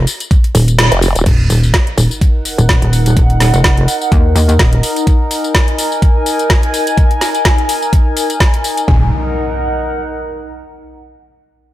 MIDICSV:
0, 0, Header, 1, 7, 480
1, 0, Start_track
1, 0, Key_signature, -6, "minor"
1, 0, Tempo, 476190
1, 1271, Time_signature, 4, 2, 24, 8
1, 11831, End_track
2, 0, Start_track
2, 0, Title_t, "Ambient pad"
2, 0, Program_c, 0, 92
2, 1273, Note_on_c, 0, 63, 89
2, 1519, Note_on_c, 0, 70, 72
2, 2001, Note_on_c, 0, 78, 84
2, 5156, Note_on_c, 0, 80, 86
2, 5301, Note_off_c, 0, 78, 0
2, 8938, Note_off_c, 0, 63, 0
2, 8950, Note_on_c, 0, 63, 82
2, 8951, Note_off_c, 0, 70, 0
2, 8951, Note_off_c, 0, 80, 0
2, 9031, Note_on_c, 0, 70, 80
2, 9105, Note_on_c, 0, 78, 72
2, 10830, Note_off_c, 0, 63, 0
2, 10831, Note_off_c, 0, 70, 0
2, 10831, Note_off_c, 0, 78, 0
2, 11831, End_track
3, 0, Start_track
3, 0, Title_t, "Wobble bass"
3, 0, Program_c, 1, 39
3, 924, Note_on_c, 1, 29, 96
3, 1143, Note_off_c, 1, 29, 0
3, 1164, Note_on_c, 1, 27, 99
3, 1254, Note_off_c, 1, 27, 0
3, 11831, End_track
4, 0, Start_track
4, 0, Title_t, "Wobble bass"
4, 0, Program_c, 2, 39
4, 552, Note_on_c, 2, 27, 97
4, 903, Note_off_c, 2, 27, 0
4, 1271, Note_on_c, 2, 27, 94
4, 1494, Note_off_c, 2, 27, 0
4, 1512, Note_on_c, 2, 27, 91
4, 1735, Note_off_c, 2, 27, 0
4, 1991, Note_on_c, 2, 27, 103
4, 2103, Note_off_c, 2, 27, 0
4, 2604, Note_on_c, 2, 27, 98
4, 2823, Note_off_c, 2, 27, 0
4, 2844, Note_on_c, 2, 27, 95
4, 3174, Note_off_c, 2, 27, 0
4, 3191, Note_on_c, 2, 27, 98
4, 3543, Note_off_c, 2, 27, 0
4, 3564, Note_on_c, 2, 29, 97
4, 3894, Note_off_c, 2, 29, 0
4, 4151, Note_on_c, 2, 39, 102
4, 4374, Note_off_c, 2, 39, 0
4, 4390, Note_on_c, 2, 39, 99
4, 4614, Note_off_c, 2, 39, 0
4, 4631, Note_on_c, 2, 27, 94
4, 4854, Note_off_c, 2, 27, 0
4, 8951, Note_on_c, 2, 27, 95
4, 9174, Note_off_c, 2, 27, 0
4, 11831, End_track
5, 0, Start_track
5, 0, Title_t, "Impact"
5, 0, Program_c, 3, 103
5, 8951, Note_on_c, 3, 60, 71
5, 10871, Note_off_c, 3, 60, 0
5, 11831, End_track
6, 0, Start_track
6, 0, Title_t, "Sub drop"
6, 0, Program_c, 4, 103
6, 1271, Note_on_c, 4, 60, 75
6, 3191, Note_off_c, 4, 60, 0
6, 11831, End_track
7, 0, Start_track
7, 0, Title_t, "Drums"
7, 72, Note_on_c, 9, 46, 108
7, 74, Note_on_c, 9, 54, 84
7, 173, Note_off_c, 9, 46, 0
7, 175, Note_off_c, 9, 54, 0
7, 205, Note_on_c, 9, 42, 40
7, 207, Note_on_c, 9, 54, 49
7, 306, Note_off_c, 9, 42, 0
7, 308, Note_off_c, 9, 54, 0
7, 312, Note_on_c, 9, 36, 118
7, 312, Note_on_c, 9, 42, 82
7, 314, Note_on_c, 9, 54, 34
7, 412, Note_off_c, 9, 36, 0
7, 413, Note_off_c, 9, 42, 0
7, 415, Note_off_c, 9, 54, 0
7, 445, Note_on_c, 9, 42, 39
7, 546, Note_off_c, 9, 42, 0
7, 552, Note_on_c, 9, 46, 102
7, 554, Note_on_c, 9, 54, 84
7, 653, Note_off_c, 9, 46, 0
7, 655, Note_off_c, 9, 54, 0
7, 685, Note_on_c, 9, 42, 40
7, 687, Note_on_c, 9, 54, 46
7, 786, Note_off_c, 9, 42, 0
7, 788, Note_off_c, 9, 54, 0
7, 792, Note_on_c, 9, 38, 122
7, 792, Note_on_c, 9, 42, 86
7, 794, Note_on_c, 9, 54, 34
7, 892, Note_off_c, 9, 38, 0
7, 893, Note_off_c, 9, 42, 0
7, 895, Note_off_c, 9, 54, 0
7, 925, Note_on_c, 9, 42, 57
7, 1026, Note_off_c, 9, 42, 0
7, 1032, Note_on_c, 9, 46, 96
7, 1034, Note_on_c, 9, 54, 79
7, 1132, Note_off_c, 9, 46, 0
7, 1134, Note_off_c, 9, 54, 0
7, 1164, Note_on_c, 9, 42, 54
7, 1167, Note_on_c, 9, 54, 47
7, 1265, Note_off_c, 9, 42, 0
7, 1267, Note_off_c, 9, 54, 0
7, 1271, Note_on_c, 9, 42, 79
7, 1271, Note_on_c, 9, 49, 93
7, 1272, Note_on_c, 9, 36, 106
7, 1274, Note_on_c, 9, 54, 33
7, 1372, Note_off_c, 9, 36, 0
7, 1372, Note_off_c, 9, 42, 0
7, 1372, Note_off_c, 9, 49, 0
7, 1374, Note_off_c, 9, 54, 0
7, 1512, Note_on_c, 9, 46, 100
7, 1514, Note_on_c, 9, 54, 75
7, 1612, Note_off_c, 9, 46, 0
7, 1615, Note_off_c, 9, 54, 0
7, 1647, Note_on_c, 9, 54, 41
7, 1748, Note_off_c, 9, 54, 0
7, 1751, Note_on_c, 9, 38, 119
7, 1752, Note_on_c, 9, 36, 107
7, 1752, Note_on_c, 9, 42, 83
7, 1852, Note_off_c, 9, 36, 0
7, 1852, Note_off_c, 9, 38, 0
7, 1853, Note_off_c, 9, 42, 0
7, 1885, Note_on_c, 9, 42, 38
7, 1986, Note_off_c, 9, 42, 0
7, 1992, Note_on_c, 9, 46, 105
7, 1994, Note_on_c, 9, 54, 80
7, 2093, Note_off_c, 9, 46, 0
7, 2095, Note_off_c, 9, 54, 0
7, 2128, Note_on_c, 9, 54, 44
7, 2229, Note_off_c, 9, 54, 0
7, 2232, Note_on_c, 9, 36, 114
7, 2232, Note_on_c, 9, 42, 75
7, 2235, Note_on_c, 9, 54, 32
7, 2332, Note_off_c, 9, 36, 0
7, 2333, Note_off_c, 9, 42, 0
7, 2335, Note_off_c, 9, 54, 0
7, 2472, Note_on_c, 9, 46, 104
7, 2474, Note_on_c, 9, 54, 79
7, 2573, Note_off_c, 9, 46, 0
7, 2575, Note_off_c, 9, 54, 0
7, 2606, Note_on_c, 9, 42, 37
7, 2608, Note_on_c, 9, 54, 43
7, 2706, Note_off_c, 9, 42, 0
7, 2709, Note_off_c, 9, 54, 0
7, 2711, Note_on_c, 9, 36, 117
7, 2712, Note_on_c, 9, 38, 119
7, 2712, Note_on_c, 9, 42, 80
7, 2714, Note_on_c, 9, 54, 31
7, 2812, Note_off_c, 9, 36, 0
7, 2812, Note_off_c, 9, 38, 0
7, 2813, Note_off_c, 9, 42, 0
7, 2815, Note_off_c, 9, 54, 0
7, 2845, Note_on_c, 9, 42, 55
7, 2946, Note_off_c, 9, 42, 0
7, 2952, Note_on_c, 9, 46, 98
7, 2954, Note_on_c, 9, 54, 75
7, 3053, Note_off_c, 9, 46, 0
7, 3055, Note_off_c, 9, 54, 0
7, 3085, Note_on_c, 9, 42, 53
7, 3087, Note_on_c, 9, 54, 44
7, 3186, Note_off_c, 9, 42, 0
7, 3188, Note_off_c, 9, 54, 0
7, 3191, Note_on_c, 9, 36, 116
7, 3192, Note_on_c, 9, 42, 76
7, 3194, Note_on_c, 9, 54, 31
7, 3292, Note_off_c, 9, 36, 0
7, 3293, Note_off_c, 9, 42, 0
7, 3295, Note_off_c, 9, 54, 0
7, 3325, Note_on_c, 9, 42, 35
7, 3426, Note_off_c, 9, 42, 0
7, 3431, Note_on_c, 9, 38, 63
7, 3432, Note_on_c, 9, 46, 106
7, 3434, Note_on_c, 9, 54, 69
7, 3532, Note_off_c, 9, 38, 0
7, 3533, Note_off_c, 9, 46, 0
7, 3535, Note_off_c, 9, 54, 0
7, 3565, Note_on_c, 9, 42, 36
7, 3567, Note_on_c, 9, 54, 41
7, 3666, Note_off_c, 9, 42, 0
7, 3668, Note_off_c, 9, 54, 0
7, 3671, Note_on_c, 9, 36, 111
7, 3671, Note_on_c, 9, 38, 127
7, 3672, Note_on_c, 9, 42, 81
7, 3674, Note_on_c, 9, 54, 31
7, 3772, Note_off_c, 9, 36, 0
7, 3772, Note_off_c, 9, 38, 0
7, 3773, Note_off_c, 9, 42, 0
7, 3775, Note_off_c, 9, 54, 0
7, 3805, Note_on_c, 9, 42, 36
7, 3905, Note_off_c, 9, 42, 0
7, 3912, Note_on_c, 9, 46, 110
7, 3914, Note_on_c, 9, 54, 76
7, 4013, Note_off_c, 9, 46, 0
7, 4015, Note_off_c, 9, 54, 0
7, 4047, Note_on_c, 9, 54, 43
7, 4148, Note_off_c, 9, 54, 0
7, 4151, Note_on_c, 9, 36, 121
7, 4151, Note_on_c, 9, 42, 79
7, 4153, Note_on_c, 9, 54, 33
7, 4252, Note_off_c, 9, 36, 0
7, 4252, Note_off_c, 9, 42, 0
7, 4254, Note_off_c, 9, 54, 0
7, 4392, Note_on_c, 9, 46, 108
7, 4394, Note_on_c, 9, 54, 75
7, 4492, Note_off_c, 9, 46, 0
7, 4495, Note_off_c, 9, 54, 0
7, 4524, Note_on_c, 9, 42, 37
7, 4527, Note_on_c, 9, 54, 42
7, 4625, Note_off_c, 9, 42, 0
7, 4627, Note_off_c, 9, 54, 0
7, 4630, Note_on_c, 9, 38, 115
7, 4631, Note_on_c, 9, 36, 125
7, 4631, Note_on_c, 9, 42, 79
7, 4633, Note_on_c, 9, 54, 32
7, 4731, Note_off_c, 9, 36, 0
7, 4731, Note_off_c, 9, 38, 0
7, 4732, Note_off_c, 9, 42, 0
7, 4734, Note_off_c, 9, 54, 0
7, 4764, Note_on_c, 9, 42, 53
7, 4865, Note_off_c, 9, 42, 0
7, 4871, Note_on_c, 9, 46, 103
7, 4873, Note_on_c, 9, 54, 74
7, 4972, Note_off_c, 9, 46, 0
7, 4974, Note_off_c, 9, 54, 0
7, 5004, Note_on_c, 9, 42, 52
7, 5006, Note_on_c, 9, 54, 43
7, 5105, Note_off_c, 9, 42, 0
7, 5107, Note_off_c, 9, 54, 0
7, 5111, Note_on_c, 9, 36, 117
7, 5111, Note_on_c, 9, 42, 74
7, 5113, Note_on_c, 9, 54, 31
7, 5211, Note_off_c, 9, 36, 0
7, 5212, Note_off_c, 9, 42, 0
7, 5214, Note_off_c, 9, 54, 0
7, 5351, Note_on_c, 9, 46, 109
7, 5353, Note_on_c, 9, 54, 72
7, 5452, Note_off_c, 9, 46, 0
7, 5454, Note_off_c, 9, 54, 0
7, 5486, Note_on_c, 9, 54, 41
7, 5587, Note_off_c, 9, 54, 0
7, 5590, Note_on_c, 9, 38, 126
7, 5591, Note_on_c, 9, 36, 113
7, 5591, Note_on_c, 9, 42, 74
7, 5593, Note_on_c, 9, 54, 32
7, 5691, Note_off_c, 9, 38, 0
7, 5692, Note_off_c, 9, 36, 0
7, 5692, Note_off_c, 9, 42, 0
7, 5694, Note_off_c, 9, 54, 0
7, 5724, Note_on_c, 9, 42, 36
7, 5825, Note_off_c, 9, 42, 0
7, 5831, Note_on_c, 9, 46, 118
7, 5833, Note_on_c, 9, 54, 80
7, 5932, Note_off_c, 9, 46, 0
7, 5934, Note_off_c, 9, 54, 0
7, 5967, Note_on_c, 9, 54, 40
7, 6068, Note_off_c, 9, 54, 0
7, 6071, Note_on_c, 9, 36, 126
7, 6072, Note_on_c, 9, 42, 74
7, 6074, Note_on_c, 9, 54, 31
7, 6172, Note_off_c, 9, 36, 0
7, 6172, Note_off_c, 9, 42, 0
7, 6175, Note_off_c, 9, 54, 0
7, 6312, Note_on_c, 9, 46, 110
7, 6314, Note_on_c, 9, 54, 72
7, 6412, Note_off_c, 9, 46, 0
7, 6415, Note_off_c, 9, 54, 0
7, 6445, Note_on_c, 9, 42, 35
7, 6447, Note_on_c, 9, 54, 40
7, 6546, Note_off_c, 9, 42, 0
7, 6548, Note_off_c, 9, 54, 0
7, 6551, Note_on_c, 9, 36, 122
7, 6551, Note_on_c, 9, 38, 117
7, 6552, Note_on_c, 9, 42, 76
7, 6554, Note_on_c, 9, 54, 30
7, 6652, Note_off_c, 9, 36, 0
7, 6652, Note_off_c, 9, 38, 0
7, 6652, Note_off_c, 9, 42, 0
7, 6655, Note_off_c, 9, 54, 0
7, 6685, Note_on_c, 9, 42, 51
7, 6786, Note_off_c, 9, 42, 0
7, 6792, Note_on_c, 9, 46, 100
7, 6794, Note_on_c, 9, 54, 71
7, 6892, Note_off_c, 9, 46, 0
7, 6894, Note_off_c, 9, 54, 0
7, 6925, Note_on_c, 9, 42, 51
7, 6927, Note_on_c, 9, 54, 43
7, 7026, Note_off_c, 9, 42, 0
7, 7028, Note_off_c, 9, 54, 0
7, 7031, Note_on_c, 9, 36, 116
7, 7032, Note_on_c, 9, 42, 75
7, 7034, Note_on_c, 9, 54, 32
7, 7132, Note_off_c, 9, 36, 0
7, 7133, Note_off_c, 9, 42, 0
7, 7135, Note_off_c, 9, 54, 0
7, 7164, Note_on_c, 9, 42, 34
7, 7265, Note_off_c, 9, 42, 0
7, 7271, Note_on_c, 9, 38, 57
7, 7271, Note_on_c, 9, 46, 108
7, 7273, Note_on_c, 9, 54, 74
7, 7372, Note_off_c, 9, 38, 0
7, 7372, Note_off_c, 9, 46, 0
7, 7374, Note_off_c, 9, 54, 0
7, 7404, Note_on_c, 9, 42, 32
7, 7406, Note_on_c, 9, 54, 41
7, 7505, Note_off_c, 9, 42, 0
7, 7507, Note_off_c, 9, 54, 0
7, 7510, Note_on_c, 9, 38, 123
7, 7511, Note_on_c, 9, 36, 109
7, 7511, Note_on_c, 9, 42, 73
7, 7513, Note_on_c, 9, 54, 33
7, 7611, Note_off_c, 9, 38, 0
7, 7612, Note_off_c, 9, 36, 0
7, 7612, Note_off_c, 9, 42, 0
7, 7614, Note_off_c, 9, 54, 0
7, 7644, Note_on_c, 9, 42, 36
7, 7745, Note_off_c, 9, 42, 0
7, 7751, Note_on_c, 9, 46, 110
7, 7753, Note_on_c, 9, 54, 80
7, 7852, Note_off_c, 9, 46, 0
7, 7854, Note_off_c, 9, 54, 0
7, 7886, Note_on_c, 9, 54, 42
7, 7987, Note_off_c, 9, 54, 0
7, 7991, Note_on_c, 9, 36, 118
7, 7992, Note_on_c, 9, 42, 76
7, 7994, Note_on_c, 9, 54, 32
7, 8092, Note_off_c, 9, 36, 0
7, 8092, Note_off_c, 9, 42, 0
7, 8095, Note_off_c, 9, 54, 0
7, 8231, Note_on_c, 9, 46, 111
7, 8233, Note_on_c, 9, 54, 75
7, 8332, Note_off_c, 9, 46, 0
7, 8334, Note_off_c, 9, 54, 0
7, 8365, Note_on_c, 9, 42, 36
7, 8367, Note_on_c, 9, 54, 44
7, 8466, Note_off_c, 9, 42, 0
7, 8468, Note_off_c, 9, 54, 0
7, 8471, Note_on_c, 9, 36, 122
7, 8471, Note_on_c, 9, 38, 114
7, 8472, Note_on_c, 9, 42, 74
7, 8474, Note_on_c, 9, 54, 33
7, 8572, Note_off_c, 9, 36, 0
7, 8572, Note_off_c, 9, 38, 0
7, 8573, Note_off_c, 9, 42, 0
7, 8575, Note_off_c, 9, 54, 0
7, 8605, Note_on_c, 9, 42, 47
7, 8706, Note_off_c, 9, 42, 0
7, 8712, Note_on_c, 9, 46, 101
7, 8714, Note_on_c, 9, 54, 68
7, 8813, Note_off_c, 9, 46, 0
7, 8815, Note_off_c, 9, 54, 0
7, 8845, Note_on_c, 9, 42, 50
7, 8847, Note_on_c, 9, 54, 42
7, 8946, Note_off_c, 9, 42, 0
7, 8948, Note_off_c, 9, 54, 0
7, 8951, Note_on_c, 9, 36, 107
7, 9052, Note_off_c, 9, 36, 0
7, 11831, End_track
0, 0, End_of_file